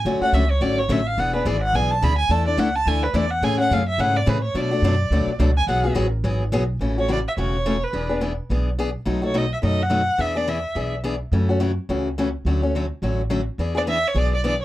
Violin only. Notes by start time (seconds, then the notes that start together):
0.23 F#5
0.34 E5
0.51 C#5
0.62 D5
0.79 C#5
0.92 E5
1.07 F5
1.20 F#5
1.36 B4
1.47 D5
1.63 F#5
1.75 G#5
1.91 A5
2.04 B5
2.18 G#5
2.31 A5
2.48 D5
2.59 F#5
2.76 A5
2.88 G#5
3.03 B4
3.16 D5
3.31 F#5
3.44 G#5
3.60 F#5
3.73 F5
3.89 E5
4.00 F#5
4.16 D5
4.28 B4
4.44 C#5
4.57 D5
5.57 G#5
5.70 F#5
7.00 C#5
7.12 D5
7.28 E5
7.38 C#5
7.84 B4
9.26 C#5
9.38 D#5
9.53 E5
9.65 D#5
9.82 F#5
10.21 E5
10.37 D5
10.49 E5
13.77 D5
13.89 E5
14.08 C#5
14.18 D5
14.35 D5
14.46 D5